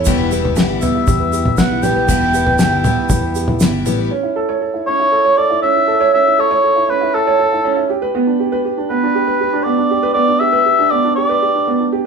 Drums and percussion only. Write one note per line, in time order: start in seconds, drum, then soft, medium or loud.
0.05 kick medium
0.05 floor tom medium
0.05 shaker medium
0.31 shaker medium
0.45 floor tom medium
0.56 snare medium
0.56 shaker medium
0.82 floor tom medium
0.82 shaker medium
1.07 kick loud
1.07 floor tom medium
1.07 mid tom medium
1.07 shaker medium
1.33 shaker medium
1.45 floor tom medium
1.45 mid tom medium
1.57 kick medium
1.57 snare medium
1.57 shaker medium
1.83 mid tom medium
1.83 shaker medium
2.09 kick medium
2.09 floor tom medium
2.09 shaker medium
2.34 shaker medium
2.47 floor tom medium
2.59 snare medium
2.59 shaker medium
2.84 floor tom medium
2.84 mid tom medium
2.84 shaker medium
3.09 kick medium
3.09 floor tom medium
3.09 mid tom medium
3.09 shaker medium
3.35 shaker medium
3.48 floor tom medium
3.48 mid tom medium
3.60 snare medium
3.60 shaker medium
3.86 mid tom medium
3.86 shaker medium